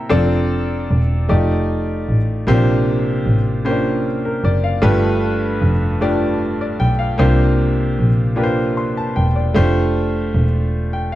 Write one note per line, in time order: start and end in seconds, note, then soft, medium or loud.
0.00 0.13 A#3 medium
0.00 0.09 C4 medium
0.00 0.13 E4 medium
0.00 0.13 G4 medium
0.00 0.10 A4 medium
0.00 0.13 E5 soft
0.00 0.13 G5 medium
0.00 0.28 A#5 soft
0.09 0.86 F1 loud
0.09 0.98 C4 medium
0.09 0.98 D4 medium
0.09 0.98 F4 medium
0.09 0.98 A4 medium
0.09 0.98 D5 loud
0.91 1.27 E1 medium
1.29 2.05 F1 medium
1.29 2.17 A3 medium
1.29 2.17 D#4 medium
1.29 2.17 F4 medium
1.29 2.17 G4 medium
1.29 2.17 D5 medium
2.09 2.45 A1 medium
2.47 3.22 A#1 loud
2.47 3.62 C3 medium
2.47 3.35 A#3 medium
2.47 2.54 C4 medium
2.47 3.35 F4 medium
2.47 3.35 G4 medium
2.47 3.35 C5 loud
2.54 3.38 D4 medium
3.26 4.40 A1 medium
3.65 4.53 A#3 medium
3.65 3.71 C#4 medium
3.65 4.53 F4 medium
3.65 4.53 G4 medium
3.65 4.05 C5 medium
3.71 4.56 D4 medium
4.25 4.43 A#4 medium
4.44 4.80 F#1 medium
4.44 4.63 D5 medium
4.64 5.01 F5 medium
4.82 5.58 G1 medium
4.82 5.97 G2 medium
4.82 5.70 A3 medium
4.82 5.70 D4 medium
4.82 5.70 F4 medium
4.82 5.70 G4 medium
4.82 5.71 B4 loud
5.62 6.76 F1 medium
6.01 6.89 A3 medium
6.01 6.89 D4 medium
6.01 6.89 F4 medium
6.01 6.89 G4 medium
6.01 6.41 D5 medium
6.61 6.79 D5 medium
6.80 7.16 B1 medium
6.80 6.99 G5 medium
6.99 7.37 F5 medium
7.18 7.94 C2 medium
7.18 8.33 C3 medium
7.18 8.06 A#3 medium
7.18 8.07 D4 medium
7.18 8.07 F4 medium
7.18 8.07 G4 medium
7.18 8.07 C5 loud
7.99 9.13 A#1 medium
8.36 9.24 A#3 medium
8.36 9.24 D4 medium
8.36 9.25 F4 medium
8.36 9.25 G4 medium
8.36 8.44 B4 medium
8.43 9.28 C5 medium
8.77 8.96 C6 medium
8.97 9.16 A5 medium
9.16 9.53 E1 medium
9.16 9.35 G5 medium
9.36 9.73 D5 medium
9.54 10.31 F1 medium
9.54 10.43 A3 medium
9.54 10.43 D4 medium
9.54 10.43 F4 medium
9.54 10.43 G4 medium
9.54 10.43 C5 loud
10.35 11.15 E1 medium
10.93 11.12 G5 medium